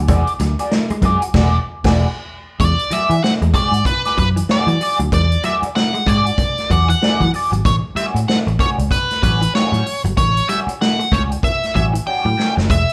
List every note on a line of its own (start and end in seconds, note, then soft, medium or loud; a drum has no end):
0.08 0.22 E2 loud
0.08 0.21 G#3 medium
0.08 0.31 F#4 medium
0.08 0.31 G#4 medium
0.08 0.32 D5 medium
0.08 kick loud
0.08 closed hi-hat loud
0.27 closed hi-hat soft
0.40 0.54 D2 medium
0.40 0.53 F#3 medium
0.40 muted clean electric guitar stroke soft
0.40 snare soft
0.40 closed hi-hat medium
0.59 0.72 F#4 soft
0.59 0.72 G#4 medium
0.59 0.72 D5 medium
0.59 muted clean electric guitar stroke medium
0.59 closed hi-hat medium
0.72 muted clean electric guitar stroke soft
0.72 snare loud
0.90 0.99 G#3 medium
0.90 muted picked electric bass stroke soft
0.90 muted clean electric guitar stroke soft
0.90 closed hi-hat soft
1.02 1.16 F#2 medium
1.02 1.16 G#3 medium
1.02 1.26 F#4 medium
1.02 1.23 G#4 loud
1.02 1.22 D5 medium
1.02 kick medium
1.02 closed hi-hat medium
1.22 muted clean electric guitar stroke soft
1.22 closed hi-hat medium
1.34 1.57 E1 medium
1.34 1.57 F#4 medium
1.34 1.58 G#4 loud
1.34 1.58 D5 loud
1.34 kick loud
1.34 snare loud
1.34 crash medium
1.84 2.05 E1 loud
1.84 2.05 F#4 medium
1.84 2.06 G#4 loud
1.84 2.06 D5 medium
1.84 kick loud
1.84 snare loud
1.84 crash medium
2.60 2.74 E2 medium
2.60 2.72 G#3 medium
2.60 2.93 D5 medium
2.60 kick loud
2.60 closed hi-hat medium
2.79 closed hi-hat soft
2.91 3.04 F#3 medium
2.91 3.14 F#4 medium
2.91 3.14 G#4 medium
2.91 3.15 D5 medium
2.91 3.22 E5 loud
2.91 muted picked electric bass stroke soft
2.91 snare soft
2.91 closed hi-hat medium
3.10 3.19 E3 medium
3.10 muted clean electric guitar stroke soft
3.10 closed hi-hat soft
3.23 3.32 F#5 medium
3.23 muted clean electric guitar stroke soft
3.23 snare loud
3.42 3.51 E2 medium
3.42 3.50 G#3 medium
3.42 muted clean electric guitar stroke soft
3.42 closed hi-hat soft
3.53 3.67 G#3 medium
3.53 3.77 F#4 medium
3.53 3.74 G#4 medium
3.53 3.84 D5 loud
3.53 3.73 D5 medium
3.53 kick loud
3.53 closed hi-hat medium
3.72 3.82 G#2 medium
3.72 muted clean electric guitar stroke soft
3.72 closed hi-hat medium
3.85 4.18 B4 medium
3.85 muted clean electric guitar stroke soft
3.85 kick loud
3.85 closed hi-hat medium
4.05 4.17 F#4 medium
4.05 4.18 G#4 medium
4.05 4.19 D5 medium
4.05 snare soft
4.05 closed hi-hat soft
4.17 4.41 F#2 medium
4.17 4.30 F#3 medium
4.17 4.28 B4 medium
4.17 kick medium
4.17 closed hi-hat medium
4.36 4.45 E3 medium
4.36 muted clean electric guitar stroke soft
4.36 closed hi-hat medium
4.49 4.72 F#4 medium
4.49 4.69 G#4 medium
4.49 4.97 D5 medium
4.49 4.67 D5 medium
4.49 snare loud
4.67 4.77 E3 medium
4.67 4.76 F#3 medium
4.67 muted clean electric guitar stroke soft
4.67 closed hi-hat soft
4.81 5.00 F#4 medium
4.81 5.00 G#4 medium
4.81 4.98 D5 medium
4.81 muted clean electric guitar stroke soft
4.81 open hi-hat medium
4.99 5.09 D2 medium
4.99 5.08 F#3 medium
4.99 muted clean electric guitar stroke soft
4.99 closed hi-hat soft
5.12 5.35 E2 loud
5.12 5.25 G#3 medium
5.12 5.42 D5 medium
5.12 kick loud
5.12 closed hi-hat loud
5.32 closed hi-hat soft
5.43 5.56 F#3 medium
5.43 5.66 F#4 medium
5.43 5.66 G#4 medium
5.43 5.67 D5 medium
5.43 5.53 E5 loud
5.43 snare soft
5.43 closed hi-hat medium
5.62 muted picked electric bass stroke soft
5.62 muted clean electric guitar stroke soft
5.62 closed hi-hat soft
5.75 6.08 F#5 medium
5.75 muted clean electric guitar stroke soft
5.75 snare loud
5.94 6.03 G#3 medium
5.94 muted clean electric guitar stroke soft
5.94 closed hi-hat soft
6.06 6.30 G#2 medium
6.06 6.19 G#3 medium
6.06 6.29 F#4 medium
6.06 6.26 G#4 medium
6.06 6.72 D5 medium
6.06 6.25 D5 medium
6.06 kick medium
6.06 closed hi-hat medium
6.26 muted clean electric guitar stroke soft
6.26 closed hi-hat soft
6.38 muted clean electric guitar stroke soft
6.38 kick loud
6.38 closed hi-hat medium
6.58 snare soft
6.58 closed hi-hat soft
6.70 6.93 E2 medium
6.70 6.82 F#3 medium
6.70 6.89 F#4 medium
6.70 6.89 G#4 medium
6.70 6.88 D5 medium
6.70 6.88 F#5 medium
6.70 kick medium
6.70 closed hi-hat medium
6.89 6.97 E3 medium
6.89 7.30 F#5 medium
6.89 muted clean electric guitar stroke soft
6.89 closed hi-hat medium
7.02 7.24 F#4 medium
7.02 7.21 G#4 medium
7.02 7.20 D5 medium
7.02 snare loud
7.20 7.30 E3 medium
7.20 7.29 F#3 medium
7.20 muted clean electric guitar stroke soft
7.20 kick medium
7.20 closed hi-hat soft
7.34 7.52 F#4 medium
7.34 7.53 G#4 medium
7.34 7.51 D5 medium
7.34 muted clean electric guitar stroke soft
7.34 open hi-hat medium
7.52 7.61 G#1 medium
7.52 7.61 F#3 medium
7.52 muted clean electric guitar stroke soft
7.52 closed hi-hat medium
7.65 7.79 A1 loud
7.65 7.77 A3 medium
7.65 7.74 C#5 medium
7.65 kick loud
7.65 closed hi-hat medium
7.95 8.18 G3 medium
7.95 8.09 G3 medium
7.95 8.19 C#4 medium
7.95 8.20 F#4 medium
7.95 8.05 E5 medium
7.95 muted picked electric bass stroke soft
7.95 snare soft
7.95 closed hi-hat medium
8.15 8.24 A2 medium
8.15 muted clean electric guitar stroke medium
8.15 closed hi-hat medium
8.28 8.37 F#5 medium
8.28 muted clean electric guitar stroke soft
8.28 snare loud
8.47 8.56 A1 medium
8.47 8.55 A3 medium
8.47 muted clean electric guitar stroke medium
8.47 closed hi-hat soft
8.59 8.81 G3 medium
8.59 8.72 A3 medium
8.59 8.78 C#4 medium
8.59 8.77 F#4 medium
8.59 8.69 C#5 medium
8.59 kick loud
8.59 closed hi-hat medium
8.78 8.88 C#2 medium
8.78 muted clean electric guitar stroke soft
8.78 closed hi-hat medium
8.91 9.22 B4 medium
8.91 muted clean electric guitar stroke soft
8.91 kick loud
8.91 closed hi-hat medium
9.11 snare soft
9.11 closed hi-hat soft
9.23 9.46 A1 medium
9.23 9.35 F#3 medium
9.23 9.41 G3 medium
9.23 9.41 C#4 medium
9.23 9.40 F#4 medium
9.23 9.52 B4 medium
9.23 kick medium
9.23 closed hi-hat medium
9.41 9.50 E3 medium
9.41 muted clean electric guitar stroke soft
9.41 closed hi-hat medium
9.54 9.66 F#3 medium
9.54 9.67 C4 medium
9.54 9.67 F4 medium
9.54 10.01 C#5 medium
9.54 snare medium
9.66 9.83 G3 medium
9.66 9.84 C#4 medium
9.66 9.84 F#4 medium
9.72 9.82 A2 medium
9.72 9.81 F#3 medium
9.72 closed hi-hat soft
9.86 muted clean electric guitar stroke soft
9.86 open hi-hat medium
10.04 10.14 G1 loud
10.04 10.13 F#3 medium
10.04 muted clean electric guitar stroke soft
10.04 closed hi-hat medium
10.17 10.40 A1 loud
10.17 10.29 A3 medium
10.17 10.49 C#5 loud
10.17 kick loud
10.17 closed hi-hat medium
10.37 closed hi-hat soft
10.48 10.70 G3 medium
10.48 10.61 G3 medium
10.48 10.71 C#4 medium
10.48 10.72 F#4 medium
10.48 10.58 E5 medium
10.48 snare soft
10.48 closed hi-hat medium
10.67 muted picked electric bass stroke soft
10.67 muted clean electric guitar stroke soft
10.67 closed hi-hat soft
10.81 11.13 F#5 medium
10.81 muted clean electric guitar stroke soft
10.81 snare loud
10.99 11.07 A3 medium
10.99 muted clean electric guitar stroke soft
10.99 closed hi-hat soft
11.12 11.35 C#2 medium
11.12 11.34 G3 medium
11.12 11.24 A3 medium
11.12 11.31 C#4 medium
11.12 11.30 F#4 medium
11.12 11.21 C#5 medium
11.12 kick medium
11.12 closed hi-hat medium
11.31 muted clean electric guitar stroke soft
11.31 closed hi-hat medium
11.43 11.74 E5 medium
11.43 muted clean electric guitar stroke soft
11.43 kick medium
11.43 closed hi-hat medium
11.63 snare soft
11.63 closed hi-hat soft
11.74 11.98 A1 loud
11.74 11.87 F#3 medium
11.74 11.93 G3 medium
11.74 11.94 C#4 medium
11.74 11.93 F#4 medium
11.74 11.84 E5 medium
11.74 kick medium
11.74 closed hi-hat medium
11.94 12.02 E3 medium
11.94 muted clean electric guitar stroke soft
11.94 closed hi-hat medium
12.07 12.29 G3 medium
12.07 12.27 C#4 medium
12.07 12.25 F#4 loud
12.07 12.53 G5 medium
12.25 12.34 A2 medium
12.25 12.34 F#3 medium
12.25 muted clean electric guitar stroke soft
12.37 12.56 G3 medium
12.37 12.57 C#4 medium
12.37 12.55 F#4 medium
12.37 muted clean electric guitar stroke soft
12.37 snare medium
12.56 12.70 F#1 medium
12.56 12.65 F#3 medium
12.56 muted clean electric guitar stroke medium
12.56 snare medium
12.70 12.83 E1 medium
12.70 12.82 G#3 medium
12.70 12.93 E5 loud
12.70 kick loud
12.70 closed hi-hat medium
12.89 closed hi-hat soft